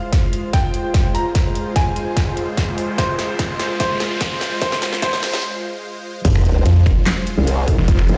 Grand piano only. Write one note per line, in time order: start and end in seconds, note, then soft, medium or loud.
0.00 0.46 F5 medium
0.53 1.07 G5 medium
1.15 1.68 A#5 medium
1.76 2.29 G#5 medium
2.98 3.72 C5 medium
3.80 4.54 C5 medium
4.62 5.01 C5 loud
5.02 5.42 C5 loud